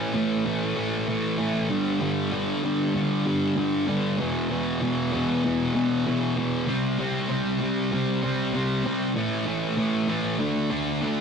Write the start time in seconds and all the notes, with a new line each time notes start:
Already playing: A2 E3 A3
0.14 A2 E3 A3
0.45 A2 E3 A3
0.77 A2 E3 A3
1.08 A2 E3 A3
1.38 A2 E3 A3
1.69 G2 D3 G3
2.00 G2 D3 G3
2.32 G2 D3 G3
2.63 G2 D3 G3
2.95 G2 D3 G3
3.26 G2 D3 G3
3.57 G2 D3 G3
3.87 G2 D3 G3
4.19 E2 B2 E3
4.50 E2 B2 E3
4.81 E2 B2 E3
5.12 E2 B2 E3
5.44 E2 B2 E3
5.74 E2 B2 E3
6.06 E2 B2 E3
6.37 E2 B2 E3
6.67 C3 G3 C4
6.99 C3 G3 C4
7.29 C3 G3 C4
7.60 C3 G3 C4
7.92 C3 G3 C4
8.23 C3 G3 C4
8.53 C3 G3 C4
8.84 C3 G3 C4
9.15 A2 E3 A3
9.46 A2 E3 A3
9.77 A2 E3 A3
10.08 A2 E3 A3
10.39 D3 A3 D4
10.70 D3 A3 D4
11.02 D3 A3 D4